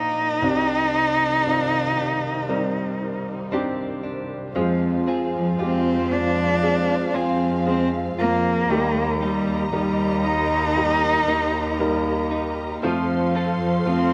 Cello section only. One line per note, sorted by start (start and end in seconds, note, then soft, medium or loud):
4.56 5.29 F2 medium
5.33 5.57 F2 medium
5.59 7.10 F2 medium
7.14 8.14 F2 medium
8.17 8.66 F2 medium
8.69 9.43 D#2 medium
9.47 9.71 D#2 medium
9.73 11.24 D#2 medium
11.27 12.79 D#2 medium
12.83 13.57 F2 medium
13.61 13.85 F2 medium
13.86 14.13 F2 medium